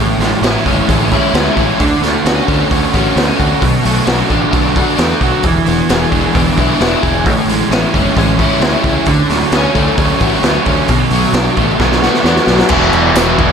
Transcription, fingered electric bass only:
0.00 0.11 A1 medium
0.19 0.33 A1 medium
0.42 0.56 A1 medium
0.66 0.79 F#1 medium
0.88 1.16 A1 medium
1.34 1.47 D2 medium
1.56 1.70 A1 medium
1.79 1.93 D2 loud
2.01 2.15 D2 medium
2.25 2.39 D2 medium
2.48 2.62 D2 medium
2.71 2.85 D2 medium
2.94 3.08 A1 medium
3.16 3.30 D2 medium
3.40 3.53 D2 medium
3.62 3.76 B1 loud
3.85 3.99 B1 medium
4.07 4.21 B1 medium
4.30 4.44 A1 medium
4.53 4.80 B1 loud
4.99 5.12 E2 medium
5.21 5.35 B1 medium
5.44 5.58 E1 medium
5.66 5.80 E1 medium
5.90 6.04 E1 medium
6.12 6.26 E1 medium
6.35 6.49 E1 medium
6.58 6.71 B1 medium
6.80 6.94 E1 medium
7.03 7.26 E1 medium
7.26 7.40 A1 medium
7.47 7.61 A1 medium
7.70 7.84 A1 medium
7.95 8.08 F#1 medium
8.17 8.44 A1 medium
8.60 8.74 D2 medium
8.84 8.98 C#2 medium
9.07 9.21 D2 medium
9.29 9.43 D2 medium
9.52 9.66 D2 medium
9.75 9.89 D2 medium
9.98 10.12 D2 medium
10.21 10.35 A1 loud
10.43 10.57 D2 medium
10.66 10.80 D2 medium
10.89 11.03 B1 medium
11.10 11.24 B1 medium
11.33 11.47 B1 medium
11.57 11.71 A1 medium
11.80 12.07 B1 medium
12.24 12.38 E2 medium
12.47 12.61 B1 medium
12.70 12.92 E1 loud
12.93 13.14 E1 medium
13.15 13.36 E1 medium
13.39 13.52 E1 medium

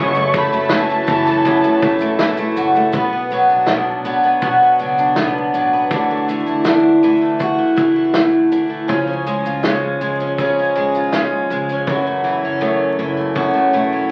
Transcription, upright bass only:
0.00 0.49 F#1 loud
0.53 1.04 F#1 medium
1.08 1.60 F#1 loud
1.82 2.52 E1 medium
2.57 2.91 F#1 medium
2.93 3.45 B1 loud
3.50 4.01 B1 loud
4.05 4.57 B1 loud
4.79 5.50 C#2 medium
5.54 5.88 A1 medium
5.90 6.43 D2 loud
6.47 6.99 D2 medium
7.03 7.55 D2 medium
7.78 8.48 C#2 medium
8.52 8.86 D2 medium
8.89 9.41 C#2 loud
9.46 9.97 C#2 loud
10.01 10.52 C#2 medium
10.76 11.46 D#2 medium
11.50 11.84 C#2 medium
11.87 12.39 F#1 loud
12.43 12.95 F#1 medium
12.99 13.50 F#1 medium
13.74 14.11 E1 medium

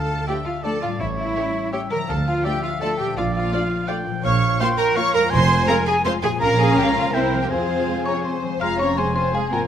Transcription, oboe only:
0.00 0.26 F5 medium
0.27 0.65 E5 medium
0.64 0.99 D5 medium
1.00 1.71 C#5 medium
1.73 2.10 E5 medium
2.09 2.46 F5 medium
2.45 3.17 E5 medium
3.17 3.52 D5 medium
3.53 3.90 F5 medium
3.88 4.24 G5 medium
4.25 4.60 F5 medium
4.60 4.98 G5 medium
4.96 5.32 F5 loud
5.30 6.12 G#5 loud
6.40 7.15 A#5 loud
7.14 7.50 G5 medium
7.50 8.41 G#5 medium
8.62 8.99 A#5 medium
8.98 9.67 G#5 medium

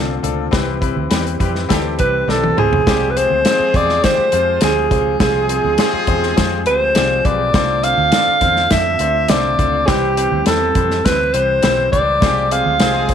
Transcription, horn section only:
1.11 1.23 E3 medium
1.11 1.23 G3 medium
1.11 1.23 C4 medium
1.11 1.23 G4 medium
1.40 1.52 E3 medium
1.40 1.53 G3 medium
1.40 1.53 C4 medium
1.40 1.53 G4 medium
1.70 2.11 E3 loud
1.70 2.11 G3 loud
1.70 2.11 C4 loud
1.70 2.11 G4 loud
2.86 3.10 C3 medium
2.86 3.10 G3 medium
2.86 3.10 G#3 medium
2.86 3.10 G4 loud
3.16 3.40 F3 medium
3.16 3.40 G#3 medium
3.16 3.39 C4 medium
3.16 3.40 G#4 medium
3.46 4.01 F3 loud
3.46 4.01 G#3 loud
3.46 4.00 C4 loud
3.46 4.01 G#4 loud
4.04 4.27 C3 medium
4.04 4.27 G3 medium
4.04 4.27 G#3 medium
4.04 4.27 G4 loud
4.32 4.87 C3 medium
4.32 4.88 F3 medium
4.32 4.87 G#3 medium
4.32 4.88 F4 medium
5.20 5.75 F3 medium
5.20 5.75 G#3 medium
5.20 5.75 C4 loud
5.20 5.75 G#4 loud
5.78 6.62 F3 loud
5.78 6.62 G#3 loud
5.78 6.62 C4 loud
5.78 6.62 G#4 loud
12.23 12.46 C3 medium
12.23 12.46 G3 medium
12.23 12.46 G#3 medium
12.23 12.46 G4 loud
12.51 12.75 F3 medium
12.51 12.74 G#3 medium
12.51 12.75 C4 medium
12.51 12.74 G#4 medium
12.80 13.14 F3 loud
12.80 13.14 G#3 loud
12.80 13.14 C4 loud
12.80 13.14 G#4 loud

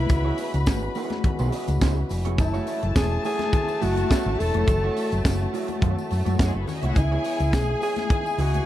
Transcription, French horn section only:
0.00 8.66 C#3 medium
0.00 6.91 E3 medium
0.00 2.35 G#3 medium
0.00 2.34 B3 medium
0.10 2.36 F#4 medium
2.38 6.92 F#3 medium
2.38 6.92 A3 medium
2.38 4.65 E4 medium
4.68 6.94 F#4 medium
6.95 8.66 E3 medium
6.95 8.66 G#3 medium
6.95 8.66 B3 medium
6.95 8.66 E4 medium

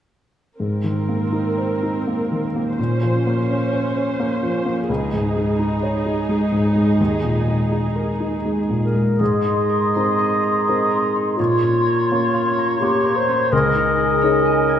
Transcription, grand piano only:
0.60 2.75 G#2 soft
0.84 1.23 D#3 soft
1.09 1.48 A#3 soft
1.33 1.72 D#4 soft
1.58 1.97 C5 soft
1.83 2.21 D#4 soft
2.07 2.46 A#3 soft
2.32 2.69 D#3 soft
2.56 2.79 A#3 soft
2.80 4.86 A#2 soft
3.03 3.40 F3 soft
3.27 3.63 A#3 soft
3.50 3.87 C#4 soft
3.73 4.10 C5 soft
3.97 4.34 C#4 soft
4.20 4.57 A#3 soft
4.43 4.80 F3 soft
4.66 4.89 A#3 soft
4.89 6.96 C#2 soft
5.13 5.51 G#2 soft
5.37 5.74 G#3 soft
5.59 5.97 D#4 soft
5.83 6.20 C#5 soft
6.06 6.43 D#4 soft
6.29 6.66 G#3 soft
6.52 6.90 G#2 soft
6.75 6.99 G#3 soft
7.00 9.16 D#2 soft
7.24 7.62 A#2 soft
7.48 7.86 G#3 soft
7.72 8.10 D#4 soft
7.96 8.34 A#4 soft
8.20 8.59 D#4 soft
8.45 8.85 G#3 soft
8.70 9.10 A#2 soft
8.96 9.20 G#3 soft
9.21 9.92 G#2 soft
9.96 10.63 C4 soft
9.96 10.64 D#4 soft
9.96 10.64 A#4 soft
10.68 11.35 C4 soft
10.68 11.35 D#4 soft
10.68 11.35 A#4 soft
11.40 12.09 A#2 soft
12.12 12.78 A#3 soft
12.12 12.78 C#4 soft
12.12 12.79 A#4 soft
12.82 13.49 A#3 soft
12.82 13.49 C#4 soft
12.82 13.49 A#4 soft
13.52 14.21 C#2 soft
14.24 14.79 C#4 soft
14.24 14.79 D#4 soft
14.24 14.79 G#4 soft

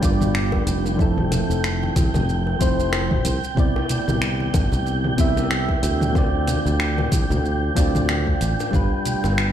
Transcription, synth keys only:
0.00 1.01 G3 medium
0.00 0.02 D4 medium
0.00 0.95 D4 medium
0.00 0.03 F4 medium
0.00 0.96 F4 medium
0.00 1.01 B4 medium
0.05 0.97 D5 medium
0.97 2.56 F3 medium
0.97 2.57 C4 medium
0.97 2.58 E4 medium
1.02 2.58 A4 medium
2.59 3.23 F3 medium
2.59 3.23 C4 medium
2.59 3.24 E4 medium
2.59 3.24 C5 loud
3.55 5.14 C3 medium
3.55 5.15 B3 medium
3.55 5.15 E4 medium
3.60 5.16 D5 medium
5.16 6.11 C3 medium
5.16 6.11 B3 medium
5.16 6.12 E4 medium
5.21 6.13 E5 loud
6.13 7.72 D3 medium
6.13 7.73 C4 medium
6.13 7.74 F4 medium
6.18 7.75 D5 medium
7.75 7.90 D3 medium
7.75 7.90 C4 medium
7.75 7.90 F4 medium
7.75 7.91 D5 medium
7.92 8.69 D3 medium
7.92 8.69 C4 medium
7.92 8.70 F4 medium
7.97 8.71 D5 medium
8.71 9.52 G3 medium
8.71 9.52 D4 medium
8.71 9.52 F4 medium
8.76 9.52 B4 medium

